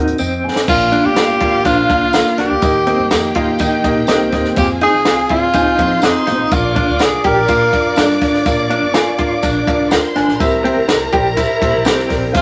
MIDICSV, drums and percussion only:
0, 0, Header, 1, 2, 480
1, 0, Start_track
1, 0, Tempo, 486224
1, 671, Time_signature, 4, 2, 24, 8
1, 12258, End_track
2, 0, Start_track
2, 0, Title_t, "Drums"
2, 72, Note_on_c, 9, 42, 60
2, 170, Note_off_c, 9, 42, 0
2, 180, Note_on_c, 9, 54, 102
2, 279, Note_off_c, 9, 54, 0
2, 554, Note_on_c, 9, 38, 90
2, 653, Note_off_c, 9, 38, 0
2, 672, Note_on_c, 9, 49, 111
2, 673, Note_on_c, 9, 36, 125
2, 680, Note_on_c, 9, 54, 82
2, 770, Note_off_c, 9, 49, 0
2, 772, Note_off_c, 9, 36, 0
2, 778, Note_off_c, 9, 54, 0
2, 913, Note_on_c, 9, 51, 60
2, 1012, Note_off_c, 9, 51, 0
2, 1147, Note_on_c, 9, 54, 103
2, 1150, Note_on_c, 9, 38, 112
2, 1150, Note_on_c, 9, 51, 81
2, 1245, Note_off_c, 9, 54, 0
2, 1249, Note_off_c, 9, 38, 0
2, 1249, Note_off_c, 9, 51, 0
2, 1385, Note_on_c, 9, 51, 67
2, 1394, Note_on_c, 9, 36, 95
2, 1484, Note_off_c, 9, 51, 0
2, 1493, Note_off_c, 9, 36, 0
2, 1626, Note_on_c, 9, 54, 80
2, 1627, Note_on_c, 9, 51, 75
2, 1632, Note_on_c, 9, 36, 89
2, 1724, Note_off_c, 9, 54, 0
2, 1726, Note_off_c, 9, 51, 0
2, 1731, Note_off_c, 9, 36, 0
2, 1872, Note_on_c, 9, 36, 99
2, 1877, Note_on_c, 9, 51, 74
2, 1971, Note_off_c, 9, 36, 0
2, 1975, Note_off_c, 9, 51, 0
2, 2103, Note_on_c, 9, 54, 101
2, 2111, Note_on_c, 9, 38, 119
2, 2113, Note_on_c, 9, 51, 83
2, 2202, Note_off_c, 9, 54, 0
2, 2210, Note_off_c, 9, 38, 0
2, 2212, Note_off_c, 9, 51, 0
2, 2230, Note_on_c, 9, 38, 37
2, 2328, Note_off_c, 9, 38, 0
2, 2348, Note_on_c, 9, 51, 54
2, 2352, Note_on_c, 9, 38, 37
2, 2447, Note_off_c, 9, 51, 0
2, 2451, Note_off_c, 9, 38, 0
2, 2585, Note_on_c, 9, 51, 74
2, 2591, Note_on_c, 9, 36, 121
2, 2599, Note_on_c, 9, 54, 74
2, 2684, Note_off_c, 9, 51, 0
2, 2690, Note_off_c, 9, 36, 0
2, 2698, Note_off_c, 9, 54, 0
2, 2831, Note_on_c, 9, 51, 62
2, 2930, Note_off_c, 9, 51, 0
2, 3067, Note_on_c, 9, 54, 106
2, 3069, Note_on_c, 9, 38, 107
2, 3069, Note_on_c, 9, 51, 85
2, 3165, Note_off_c, 9, 54, 0
2, 3167, Note_off_c, 9, 38, 0
2, 3168, Note_off_c, 9, 51, 0
2, 3304, Note_on_c, 9, 51, 69
2, 3315, Note_on_c, 9, 36, 98
2, 3403, Note_off_c, 9, 51, 0
2, 3414, Note_off_c, 9, 36, 0
2, 3541, Note_on_c, 9, 54, 84
2, 3546, Note_on_c, 9, 51, 85
2, 3552, Note_on_c, 9, 36, 88
2, 3639, Note_off_c, 9, 54, 0
2, 3645, Note_off_c, 9, 51, 0
2, 3651, Note_off_c, 9, 36, 0
2, 3792, Note_on_c, 9, 36, 93
2, 3793, Note_on_c, 9, 51, 72
2, 3891, Note_off_c, 9, 36, 0
2, 3892, Note_off_c, 9, 51, 0
2, 4018, Note_on_c, 9, 54, 108
2, 4029, Note_on_c, 9, 38, 119
2, 4031, Note_on_c, 9, 51, 77
2, 4117, Note_off_c, 9, 54, 0
2, 4128, Note_off_c, 9, 38, 0
2, 4130, Note_off_c, 9, 51, 0
2, 4267, Note_on_c, 9, 51, 53
2, 4271, Note_on_c, 9, 38, 35
2, 4272, Note_on_c, 9, 36, 89
2, 4365, Note_off_c, 9, 51, 0
2, 4369, Note_off_c, 9, 38, 0
2, 4371, Note_off_c, 9, 36, 0
2, 4387, Note_on_c, 9, 38, 35
2, 4486, Note_off_c, 9, 38, 0
2, 4504, Note_on_c, 9, 51, 70
2, 4512, Note_on_c, 9, 36, 124
2, 4520, Note_on_c, 9, 54, 78
2, 4602, Note_off_c, 9, 51, 0
2, 4611, Note_off_c, 9, 36, 0
2, 4619, Note_off_c, 9, 54, 0
2, 4749, Note_on_c, 9, 51, 61
2, 4848, Note_off_c, 9, 51, 0
2, 4987, Note_on_c, 9, 38, 106
2, 4987, Note_on_c, 9, 51, 77
2, 4988, Note_on_c, 9, 54, 101
2, 5086, Note_off_c, 9, 38, 0
2, 5086, Note_off_c, 9, 51, 0
2, 5087, Note_off_c, 9, 54, 0
2, 5223, Note_on_c, 9, 51, 62
2, 5234, Note_on_c, 9, 36, 99
2, 5321, Note_off_c, 9, 51, 0
2, 5333, Note_off_c, 9, 36, 0
2, 5462, Note_on_c, 9, 51, 79
2, 5468, Note_on_c, 9, 54, 82
2, 5472, Note_on_c, 9, 36, 94
2, 5560, Note_off_c, 9, 51, 0
2, 5566, Note_off_c, 9, 54, 0
2, 5570, Note_off_c, 9, 36, 0
2, 5713, Note_on_c, 9, 36, 90
2, 5714, Note_on_c, 9, 51, 74
2, 5811, Note_off_c, 9, 36, 0
2, 5812, Note_off_c, 9, 51, 0
2, 5940, Note_on_c, 9, 54, 112
2, 5953, Note_on_c, 9, 38, 118
2, 5955, Note_on_c, 9, 51, 76
2, 6038, Note_off_c, 9, 54, 0
2, 6052, Note_off_c, 9, 38, 0
2, 6054, Note_off_c, 9, 51, 0
2, 6190, Note_on_c, 9, 51, 55
2, 6194, Note_on_c, 9, 38, 37
2, 6289, Note_off_c, 9, 51, 0
2, 6292, Note_off_c, 9, 38, 0
2, 6431, Note_on_c, 9, 51, 68
2, 6434, Note_on_c, 9, 36, 124
2, 6438, Note_on_c, 9, 54, 73
2, 6529, Note_off_c, 9, 51, 0
2, 6532, Note_off_c, 9, 36, 0
2, 6537, Note_off_c, 9, 54, 0
2, 6673, Note_on_c, 9, 51, 55
2, 6675, Note_on_c, 9, 36, 99
2, 6772, Note_off_c, 9, 51, 0
2, 6774, Note_off_c, 9, 36, 0
2, 6903, Note_on_c, 9, 54, 98
2, 6912, Note_on_c, 9, 38, 118
2, 6913, Note_on_c, 9, 51, 83
2, 7002, Note_off_c, 9, 54, 0
2, 7011, Note_off_c, 9, 38, 0
2, 7012, Note_off_c, 9, 51, 0
2, 7146, Note_on_c, 9, 51, 65
2, 7154, Note_on_c, 9, 36, 94
2, 7245, Note_off_c, 9, 51, 0
2, 7253, Note_off_c, 9, 36, 0
2, 7383, Note_on_c, 9, 54, 82
2, 7387, Note_on_c, 9, 51, 83
2, 7391, Note_on_c, 9, 36, 94
2, 7482, Note_off_c, 9, 54, 0
2, 7486, Note_off_c, 9, 51, 0
2, 7490, Note_off_c, 9, 36, 0
2, 7632, Note_on_c, 9, 36, 90
2, 7635, Note_on_c, 9, 51, 68
2, 7730, Note_off_c, 9, 36, 0
2, 7734, Note_off_c, 9, 51, 0
2, 7861, Note_on_c, 9, 54, 108
2, 7873, Note_on_c, 9, 38, 120
2, 7875, Note_on_c, 9, 51, 78
2, 7959, Note_off_c, 9, 54, 0
2, 7972, Note_off_c, 9, 38, 0
2, 7974, Note_off_c, 9, 51, 0
2, 7995, Note_on_c, 9, 38, 35
2, 8094, Note_off_c, 9, 38, 0
2, 8111, Note_on_c, 9, 36, 92
2, 8111, Note_on_c, 9, 46, 49
2, 8111, Note_on_c, 9, 51, 59
2, 8114, Note_on_c, 9, 38, 38
2, 8209, Note_off_c, 9, 46, 0
2, 8209, Note_off_c, 9, 51, 0
2, 8210, Note_off_c, 9, 36, 0
2, 8213, Note_off_c, 9, 38, 0
2, 8230, Note_on_c, 9, 38, 38
2, 8329, Note_off_c, 9, 38, 0
2, 8348, Note_on_c, 9, 51, 76
2, 8349, Note_on_c, 9, 44, 69
2, 8351, Note_on_c, 9, 36, 123
2, 8357, Note_on_c, 9, 54, 78
2, 8447, Note_off_c, 9, 51, 0
2, 8448, Note_off_c, 9, 44, 0
2, 8450, Note_off_c, 9, 36, 0
2, 8456, Note_off_c, 9, 54, 0
2, 8592, Note_on_c, 9, 51, 59
2, 8691, Note_off_c, 9, 51, 0
2, 8826, Note_on_c, 9, 38, 110
2, 8826, Note_on_c, 9, 51, 82
2, 8828, Note_on_c, 9, 54, 100
2, 8924, Note_off_c, 9, 38, 0
2, 8925, Note_off_c, 9, 51, 0
2, 8927, Note_off_c, 9, 54, 0
2, 9065, Note_on_c, 9, 51, 65
2, 9073, Note_on_c, 9, 36, 93
2, 9164, Note_off_c, 9, 51, 0
2, 9172, Note_off_c, 9, 36, 0
2, 9304, Note_on_c, 9, 54, 82
2, 9308, Note_on_c, 9, 51, 82
2, 9310, Note_on_c, 9, 36, 94
2, 9402, Note_off_c, 9, 54, 0
2, 9407, Note_off_c, 9, 51, 0
2, 9409, Note_off_c, 9, 36, 0
2, 9550, Note_on_c, 9, 36, 94
2, 9555, Note_on_c, 9, 51, 70
2, 9649, Note_off_c, 9, 36, 0
2, 9654, Note_off_c, 9, 51, 0
2, 9784, Note_on_c, 9, 54, 111
2, 9790, Note_on_c, 9, 38, 117
2, 9792, Note_on_c, 9, 51, 80
2, 9883, Note_off_c, 9, 54, 0
2, 9889, Note_off_c, 9, 38, 0
2, 9891, Note_off_c, 9, 51, 0
2, 10028, Note_on_c, 9, 51, 55
2, 10032, Note_on_c, 9, 38, 39
2, 10127, Note_off_c, 9, 51, 0
2, 10130, Note_off_c, 9, 38, 0
2, 10154, Note_on_c, 9, 38, 38
2, 10253, Note_off_c, 9, 38, 0
2, 10268, Note_on_c, 9, 51, 70
2, 10270, Note_on_c, 9, 36, 120
2, 10279, Note_on_c, 9, 54, 80
2, 10367, Note_off_c, 9, 51, 0
2, 10369, Note_off_c, 9, 36, 0
2, 10377, Note_off_c, 9, 54, 0
2, 10514, Note_on_c, 9, 51, 64
2, 10613, Note_off_c, 9, 51, 0
2, 10746, Note_on_c, 9, 38, 112
2, 10746, Note_on_c, 9, 51, 87
2, 10746, Note_on_c, 9, 54, 95
2, 10845, Note_off_c, 9, 38, 0
2, 10845, Note_off_c, 9, 51, 0
2, 10845, Note_off_c, 9, 54, 0
2, 10980, Note_on_c, 9, 51, 63
2, 10991, Note_on_c, 9, 36, 89
2, 11079, Note_off_c, 9, 51, 0
2, 11090, Note_off_c, 9, 36, 0
2, 11221, Note_on_c, 9, 54, 76
2, 11225, Note_on_c, 9, 51, 75
2, 11229, Note_on_c, 9, 36, 88
2, 11320, Note_off_c, 9, 54, 0
2, 11324, Note_off_c, 9, 51, 0
2, 11328, Note_off_c, 9, 36, 0
2, 11469, Note_on_c, 9, 36, 91
2, 11473, Note_on_c, 9, 51, 74
2, 11567, Note_off_c, 9, 36, 0
2, 11572, Note_off_c, 9, 51, 0
2, 11698, Note_on_c, 9, 54, 114
2, 11712, Note_on_c, 9, 38, 116
2, 11714, Note_on_c, 9, 51, 83
2, 11796, Note_off_c, 9, 54, 0
2, 11810, Note_off_c, 9, 38, 0
2, 11812, Note_off_c, 9, 51, 0
2, 11831, Note_on_c, 9, 38, 36
2, 11929, Note_off_c, 9, 38, 0
2, 11945, Note_on_c, 9, 46, 48
2, 11945, Note_on_c, 9, 51, 55
2, 11949, Note_on_c, 9, 36, 84
2, 11949, Note_on_c, 9, 38, 35
2, 12044, Note_off_c, 9, 46, 0
2, 12044, Note_off_c, 9, 51, 0
2, 12047, Note_off_c, 9, 36, 0
2, 12048, Note_off_c, 9, 38, 0
2, 12185, Note_on_c, 9, 51, 79
2, 12186, Note_on_c, 9, 44, 75
2, 12190, Note_on_c, 9, 36, 115
2, 12199, Note_on_c, 9, 54, 82
2, 12258, Note_off_c, 9, 36, 0
2, 12258, Note_off_c, 9, 44, 0
2, 12258, Note_off_c, 9, 51, 0
2, 12258, Note_off_c, 9, 54, 0
2, 12258, End_track
0, 0, End_of_file